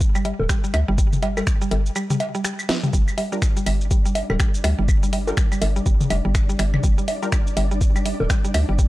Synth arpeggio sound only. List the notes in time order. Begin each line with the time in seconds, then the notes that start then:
0.15 G3
0.25 G3
0.49 G3
0.64 G3
0.88 G3
0.98 G3
1.23 G3
1.37 G3
1.62 G3
1.71 G3
1.96 G3
2.10 G3
2.35 G3
2.44 G3
2.69 F3
2.83 G3
2.93 G3
3.18 G3
3.32 G3
3.57 G3
3.66 G3
3.91 G3
4.05 G3
4.30 G3
4.40 G3
4.64 G3
4.79 G3
5.03 G3
5.13 G3
5.37 G3
5.52 G3
5.76 G3
5.86 G3
6.10 G3
6.25 G3
6.49 G3
6.59 G3
6.84 G3
6.98 G3
7.22 G3
7.32 G3
7.57 G3
7.71 G3
7.96 G3
8.06 G3
8.30 G3
8.45 G3
8.69 G3
8.79 G3